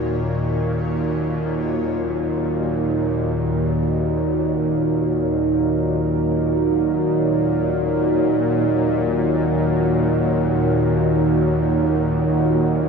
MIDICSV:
0, 0, Header, 1, 4, 480
1, 0, Start_track
1, 0, Key_signature, -6, "minor"
1, 0, Tempo, 500000
1, 12373, End_track
2, 0, Start_track
2, 0, Title_t, "Synth texture"
2, 0, Program_c, 0, 99
2, 0, Note_on_c, 0, 73, 76
2, 1548, Note_off_c, 0, 73, 0
2, 12373, End_track
3, 0, Start_track
3, 0, Title_t, "Ambient pad"
3, 0, Program_c, 1, 92
3, 0, Note_on_c, 1, 63, 76
3, 0, Note_on_c, 1, 66, 77
3, 0, Note_on_c, 1, 70, 64
3, 0, Note_on_c, 1, 73, 74
3, 12373, Note_off_c, 1, 63, 0
3, 12373, Note_off_c, 1, 66, 0
3, 12373, Note_off_c, 1, 70, 0
3, 12373, Note_off_c, 1, 73, 0
3, 12373, End_track
4, 0, Start_track
4, 0, Title_t, "Synth drone"
4, 0, Program_c, 2, 95
4, 0, Note_on_c, 2, 39, 75
4, 0, Note_on_c, 2, 46, 76
4, 1501, Note_off_c, 2, 46, 0
4, 1503, Note_off_c, 2, 39, 0
4, 1512, Note_on_c, 2, 46, 75
4, 1515, Note_on_c, 2, 39, 75
4, 12373, Note_off_c, 2, 39, 0
4, 12373, Note_off_c, 2, 46, 0
4, 12373, End_track
0, 0, End_of_file